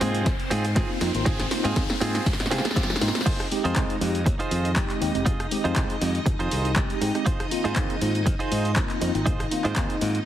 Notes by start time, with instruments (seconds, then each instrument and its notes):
Already playing: string machine C4 C5, riser
0.01 fingered electric bass G#2, tine electric piano A#3 C4 D#4 F4, clean electric guitar C4 F4 G#4, snare, open hi-hat
0.15 closed hi-hat
0.26 fingered electric bass F2, kick, snare, closed hi-hat
0.40 muted fingered electric bass stroke, closed hi-hat
0.51 fingered electric bass G#2, clean electric guitar C4 F4 G#4, snare, open hi-hat
0.65 closed hi-hat
0.76 tine electric piano A#3 C4 D#4 F4, clean electric guitar C4 F4 G#4, kick, snare, closed hi-hat
1.01 fingered electric bass F2, tine electric piano A#3 C4 D#4 F4, muted clean electric guitar stroke, snare, open hi-hat
1.14 fingered electric bass G#1, tine electric piano A#3 C4 D#4 F4, closed hi-hat
1.26 clean electric guitar C4 F4 G#4, kick, snare, closed hi-hat
1.40 snare, closed hi-hat
1.51 tine electric piano A#3 C4 D#4 F4, snare, open hi-hat
1.64 fingered electric bass G#2, clean electric guitar C4 F4 G#4, snare, closed hi-hat
1.76 fingered electric bass D#2, tine electric piano A#3 C4 D#4 G#4, kick, snare, closed hi-hat
1.90 snare
2.01 fingered electric bass G#2, tine electric piano A#3 C4 D#4 F4, clean electric guitar C4 F4 G#4, snare, open hi-hat
2.15 snare, closed hi-hat
2.26 fingered electric bass G#1, kick, snare, closed hi-hat
2.33 snare
2.40 fingered electric bass G#2, snare, closed hi-hat
2.46 snare
2.51 fingered electric bass C3, clean electric guitar C4 F4 G#4, snare, open hi-hat
2.58 snare
2.64 tine electric piano A#3 C4 D#4 G#4, muted fingered electric bass stroke, snare, closed hi-hat
2.71 snare
2.76 fingered electric bass F3, clean electric guitar C4 F4 G4, kick, snare, closed hi-hat
2.83 snare
2.90 snare
2.96 snare
3.01 fingered electric bass G#2, tine electric piano A#3 C4 D#4 F4, muted clean electric guitar stroke, snare, open hi-hat
3.08 snare
3.15 snare, closed hi-hat
3.21 snare
3.26 clean electric guitar D#4 F4 G#4 C5, string machine D#4 D#5, kick, closed hi-hat, crash
3.40 cross-stick, closed hi-hat
3.51 tine electric piano G#3 C4 D#4 G4, open hi-hat
3.64 fingered electric bass F2, clean electric guitar D#4 F4 G#4 C5, closed hi-hat
3.76 fingered electric bass C2, tine electric piano G#3 C4 D#4 G#4, kick, clap, closed hi-hat
3.90 closed hi-hat
4.01 fingered electric bass F2, tine electric piano G#3 C4 D#4 G4, open hi-hat
4.15 closed hi-hat
4.26 fingered electric bass D#2, muted clean electric guitar stroke, kick, closed hi-hat
4.39 clean electric guitar D#4 F4 G#4 C5, muted fingered electric bass stroke, closed hi-hat
4.51 fingered electric bass F2, open hi-hat
4.65 closed hi-hat
4.76 tine electric piano G#3 C4 D#4 G4, kick, clap, closed hi-hat
4.90 clap, closed hi-hat
5.01 fingered electric bass D#2, tine electric piano G#3 C4 D#4 G4, muted clean electric guitar stroke, open hi-hat
5.14 fingered electric bass F1, tine electric piano G#3 C4 D#4 G4, closed hi-hat
5.26 clean electric guitar D#4 F4 G#4 D#5, kick, closed hi-hat
5.40 cross-stick, closed hi-hat
5.51 tine electric piano G#3 C4 D#4 G4, open hi-hat
5.64 fingered electric bass F2, clean electric guitar D#4 F4 G#4 C5, closed hi-hat
5.76 fingered electric bass C2, tine electric piano G#3 C4 D#4 G#4, kick, clap, closed hi-hat
5.90 closed hi-hat
6.01 fingered electric bass F2, tine electric piano G#3 C4 D#4 G4, open hi-hat
6.15 closed hi-hat
6.26 fingered electric bass F1, muted clean electric guitar stroke, kick, closed hi-hat
6.39 fingered electric bass F2, clean electric guitar D#4 F4 G#4 C5, cross-stick, closed hi-hat
6.51 fingered electric bass C2, open hi-hat
6.65 closed hi-hat
6.76 tine electric piano G#3 C4 D#4 G4, kick, clap, closed hi-hat
6.90 closed hi-hat
7.01 fingered electric bass G#2, tine electric piano G#3 C4 D#4 G4, muted clean electric guitar stroke, open hi-hat
7.14 tine electric piano G#3 C4 D#4 G4, cross-stick, closed hi-hat
7.26 clean electric guitar D#4 F4 G#4 C5, kick, closed hi-hat
7.40 cross-stick, closed hi-hat
7.51 tine electric piano A#3 C4 D#4 F4, open hi-hat
7.64 fingered electric bass G#2, clean electric guitar D#4 F4 G#4 C5, closed hi-hat
7.76 fingered electric bass D#2, tine electric piano A#3 C4 D#4 G#4, kick, clap, closed hi-hat
7.90 closed hi-hat
8.01 fingered electric bass G#2, tine electric piano A#3 C4 D#4 F4, open hi-hat
8.15 closed hi-hat
8.26 fingered electric bass F2, muted clean electric guitar stroke, kick, closed hi-hat
8.39 clean electric guitar D#4 F4 G#4 C5, muted fingered electric bass stroke, closed hi-hat
8.52 fingered electric bass G#2, open hi-hat
8.65 closed hi-hat
8.76 tine electric piano A#3 C4 D#4 F4, kick, clap, closed hi-hat
8.90 clap, closed hi-hat
9.01 fingered electric bass F2, tine electric piano A#3 C4 D#4 F4, muted clean electric guitar stroke, open hi-hat
9.15 fingered electric bass G#1, tine electric piano A#3 C4 D#4 F4, closed hi-hat
9.26 clean electric guitar D#4 F4 G#4 C5, kick, closed hi-hat
9.40 cross-stick, closed hi-hat
9.51 tine electric piano A#3 C4 D#4 F4, open hi-hat
9.64 fingered electric bass G#2, clean electric guitar D#4 F4 G#4 C5, clap, closed hi-hat
9.76 fingered electric bass D#2, tine electric piano A#3 C4 D#4 G#4, kick, clap, closed hi-hat
9.90 closed hi-hat
10.01 fingered electric bass G#2, tine electric piano A#3 C4 D#4 F4, open hi-hat
10.15 closed hi-hat